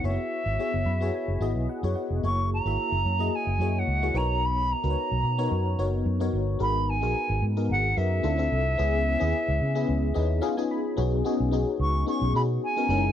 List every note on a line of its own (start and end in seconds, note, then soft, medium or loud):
0.04 0.16 F#1 medium
0.04 0.11 A#3 medium
0.04 0.52 E4 medium
0.04 0.52 F#4 medium
0.04 0.52 G#4 medium
0.04 0.53 C#5 medium
0.04 1.68 E5 loud
0.10 0.55 B3 medium
0.46 0.57 G#1 medium
0.59 0.95 B3 medium
0.59 0.95 E4 medium
0.59 0.96 F#4 medium
0.59 0.96 G#4 medium
0.59 0.96 C#5 medium
0.74 0.84 F#1 medium
0.86 1.09 F#2 loud
0.86 1.11 B5 medium
1.00 1.36 B3 medium
1.00 1.36 E4 medium
1.00 1.36 F#4 medium
1.00 1.36 G#4 medium
1.00 1.36 C#5 medium
1.14 1.65 G#5 medium
1.28 1.39 F#1 medium
1.40 1.53 G#1 medium
1.40 1.77 B3 medium
1.40 1.77 E4 medium
1.40 1.77 F#4 medium
1.40 1.78 G#4 medium
1.40 1.78 D#5 medium
1.56 1.66 B1 medium
1.69 1.94 F#5 medium
1.83 1.94 F#2 medium
1.83 2.18 B3 medium
1.83 2.18 E4 medium
1.83 2.18 F#4 medium
1.83 2.19 G#4 medium
1.83 2.19 C#5 medium
1.95 2.21 F#5 medium
2.10 2.21 F1 medium
2.23 2.59 F#1 loud
2.23 2.60 A#3 medium
2.23 2.59 E4 medium
2.23 2.60 F#4 medium
2.23 2.60 G#4 medium
2.23 2.60 C#5 medium
2.23 2.49 C#6 loud
2.53 3.36 A#5 loud
2.65 2.76 G#1 medium
2.65 3.12 A#3 medium
2.65 3.12 E4 medium
2.65 3.13 F#4 medium
2.65 3.13 G#4 medium
2.65 3.13 E5 medium
2.92 3.03 F#1 medium
3.05 3.28 F#2 medium
3.19 3.54 A#3 medium
3.19 3.55 E4 medium
3.19 3.55 F#4 medium
3.19 3.55 G#4 medium
3.19 3.55 D#5 medium
3.35 3.80 G#5 medium
3.47 3.58 F#1 medium
3.59 3.82 F#2 medium
3.59 3.96 A#3 medium
3.59 3.96 E4 medium
3.59 3.97 F#4 medium
3.59 3.97 G#4 medium
3.59 3.97 C#5 medium
3.78 4.18 F#5 medium
3.87 4.10 C#2 medium
4.02 4.15 A#3 medium
4.02 4.15 E4 medium
4.02 4.14 F#4 medium
4.02 4.15 G#4 medium
4.02 4.14 C#5 medium
4.14 4.73 B1 loud
4.14 4.74 B3 medium
4.14 4.74 D#4 medium
4.14 4.75 F#4 medium
4.14 4.75 A#4 medium
4.14 4.75 C#5 medium
4.14 4.47 A#5 medium
4.45 4.73 B5 loud
4.72 5.80 A#5 medium
4.83 4.95 C#2 medium
4.83 5.31 B3 medium
4.83 5.31 D#4 medium
4.83 5.31 F#4 medium
4.83 5.31 A#4 medium
4.83 4.90 B4 medium
4.90 5.34 C#5 medium
5.12 5.22 B1 medium
5.24 5.47 B2 loud
5.38 5.73 B3 medium
5.38 5.74 D#4 medium
5.38 5.74 F#4 medium
5.38 5.74 A#4 medium
5.38 5.74 C#5 loud
5.51 5.74 F#2 loud
5.78 6.02 F#1 medium
5.78 6.15 B3 medium
5.78 6.15 D#4 medium
5.78 6.15 F#4 medium
5.78 6.15 A#4 medium
5.78 6.15 C#5 medium
6.06 6.29 F#2 medium
6.20 6.55 B3 medium
6.20 6.55 D#4 medium
6.20 6.56 F#4 medium
6.20 6.56 A#4 medium
6.20 6.56 C#5 medium
6.33 6.56 G1 medium
6.59 7.03 G#1 loud
6.59 6.96 B3 medium
6.59 6.96 D#4 medium
6.59 6.97 F#4 medium
6.59 6.96 G#4 medium
6.59 6.97 A#4 medium
6.59 6.91 B5 loud
6.89 7.43 G#5 medium
7.01 7.13 A#1 medium
7.01 7.49 B3 medium
7.01 7.49 D#4 medium
7.01 7.50 F#4 medium
7.01 7.49 G#4 medium
7.01 7.50 A#4 medium
7.30 7.40 G#1 medium
7.42 7.71 G#2 loud
7.57 7.92 B3 medium
7.57 7.92 D#4 medium
7.57 7.92 F#4 medium
7.57 7.92 G#4 medium
7.57 7.92 A#4 medium
7.70 7.93 G#1 loud
7.70 7.98 F#5 loud
7.97 8.20 F#2 medium
7.97 8.24 B3 medium
7.97 8.24 D#4 medium
7.97 8.25 F#4 medium
7.97 8.25 G#4 medium
7.97 8.25 A#4 medium
7.97 10.43 E5 loud
8.23 8.47 D2 loud
8.23 8.36 C4 medium
8.23 8.37 D4 medium
8.23 8.36 E4 medium
8.23 8.37 F4 medium
8.23 8.37 A4 medium
8.37 8.73 C4 medium
8.37 8.73 D4 medium
8.37 8.73 E4 medium
8.37 8.74 F4 medium
8.37 8.74 A4 medium
8.52 8.75 C2 medium
8.78 9.15 C#2 loud
8.78 9.15 B3 medium
8.78 9.15 C#4 medium
8.78 9.15 E4 medium
8.78 9.15 G#4 loud
9.19 9.32 D#2 medium
9.19 9.67 B3 medium
9.19 9.67 C#4 medium
9.19 9.68 E4 medium
9.19 9.68 G#4 loud
9.48 9.59 C#2 medium
9.61 9.84 C#3 loud
9.75 10.10 B3 medium
9.75 10.10 C#4 medium
9.75 10.11 E4 medium
9.75 10.11 G#4 loud
9.89 10.12 C#2 loud
10.14 10.39 D#2 medium
10.14 10.40 B3 medium
10.14 10.40 C#4 medium
10.14 10.41 D#4 medium
10.14 10.43 E4 medium
10.14 10.41 G#4 medium
10.14 10.41 D#5 medium
10.41 10.55 B3 loud
10.41 10.55 C#4 medium
10.41 10.55 D#4 medium
10.41 10.55 F4 medium
10.41 10.56 G#4 loud
10.41 10.56 F5 medium
10.57 10.92 B3 medium
10.57 10.93 C#4 medium
10.57 10.93 D#4 medium
10.57 10.93 F4 medium
10.57 10.93 G#4 loud
10.57 10.69 G#5 medium
10.71 10.96 B5 medium
10.97 11.21 B1 loud
10.97 11.21 B3 medium
10.97 11.21 C#4 medium
10.97 11.22 D#4 medium
10.97 11.22 F#4 medium
10.97 11.22 G#4 loud
11.24 11.49 B3 medium
11.24 11.49 C#4 medium
11.24 11.49 D#4 medium
11.24 11.49 F#4 medium
11.24 11.49 G#4 loud
11.40 11.63 B1 loud
11.51 12.00 B3 medium
11.51 12.00 C#4 medium
11.51 12.00 D#4 medium
11.51 12.00 F#4 medium
11.51 12.01 G#4 loud
11.80 12.03 C#2 medium
11.80 12.06 C#6 loud
12.06 12.31 B3 medium
12.06 12.31 C#4 medium
12.06 12.31 D#4 medium
12.06 12.31 F#4 medium
12.06 12.31 G#4 medium
12.06 12.33 C#6 loud
12.21 12.32 B1 medium
12.34 12.57 B2 loud
12.34 12.71 B3 medium
12.34 12.71 C#4 medium
12.34 12.71 D#4 medium
12.34 12.71 F#4 medium
12.34 12.71 G#4 medium
12.34 12.41 B5 loud
12.63 13.12 G#5 loud
12.77 12.89 B3 medium
12.77 12.88 C#4 medium
12.77 12.88 D#4 medium
12.77 12.89 F#4 medium
12.77 12.89 A#4 medium
12.89 13.12 F#1 loud
12.89 13.12 G#3 medium
12.89 13.12 C#4 medium
12.89 13.12 D#4 medium
12.89 13.12 E4 medium
12.89 13.12 A#4 medium